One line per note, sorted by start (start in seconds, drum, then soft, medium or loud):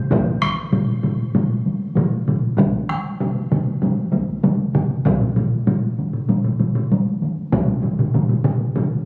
0.11 taiko loud
0.11 taiko low-mid loud
0.11 taiko high medium
0.27 taiko high soft
0.42 taiko rim medium
0.42 taiko high soft
0.57 taiko high soft
0.73 taiko low-mid loud
0.73 taiko high medium
0.88 taiko high soft
1.03 taiko low-mid medium
1.03 taiko high soft
1.20 taiko high soft
1.35 taiko low-mid loud
1.35 taiko high medium
1.51 taiko high soft
1.66 taiko high medium
1.82 taiko high soft
1.97 taiko low-mid loud
1.97 taiko high medium
2.12 taiko high soft
2.28 taiko low-mid medium
2.28 taiko high medium
2.44 taiko high soft
2.58 taiko loud
2.58 taiko mid medium
2.58 taiko high medium
2.75 taiko high soft
2.89 taiko rim medium
2.89 taiko high soft
3.06 taiko high soft
3.20 taiko mid loud
3.20 taiko high medium
3.36 taiko high soft
3.51 taiko mid loud
3.51 taiko high medium
3.67 taiko high soft
3.82 taiko mid medium
3.82 taiko high medium
3.98 taiko high soft
4.12 taiko medium
4.12 taiko high medium
4.29 taiko high soft
4.43 taiko mid medium
4.43 taiko high medium
4.59 taiko high soft
4.75 taiko mid loud
4.75 taiko high medium
4.90 taiko high soft
5.05 taiko loud
5.05 taiko low-mid medium
5.05 taiko high medium
5.21 taiko low-mid medium
5.21 taiko high soft
5.36 taiko low-mid medium
5.36 taiko high medium
5.52 taiko high soft
5.67 taiko low-mid loud
5.67 taiko high medium
5.83 taiko high soft
5.98 taiko high medium
6.13 taiko low-mid medium
6.13 taiko high soft
6.29 taiko low-mid medium
6.29 taiko high medium
6.44 taiko low-mid medium
6.44 taiko high soft
6.59 taiko low-mid medium
6.59 taiko high medium
6.75 taiko low-mid medium
6.75 taiko high soft
6.92 taiko high medium
7.07 taiko high soft
7.22 taiko high medium
7.38 taiko high soft
7.52 taiko medium
7.52 taiko low-mid loud
7.52 taiko mid loud
7.52 taiko high medium
7.69 taiko high medium
7.83 taiko low-mid medium
7.83 taiko mid medium
7.83 taiko high medium
7.99 taiko low-mid medium
7.99 taiko mid medium
7.99 taiko high soft
8.14 taiko low-mid medium
8.14 taiko mid medium
8.14 taiko high medium
8.29 taiko low-mid medium
8.29 taiko mid medium
8.29 taiko high soft
8.44 taiko low-mid medium
8.44 taiko mid loud
8.44 taiko high medium
8.61 taiko high soft
8.76 taiko low-mid medium
8.76 taiko mid medium
8.76 taiko high medium
8.92 taiko high soft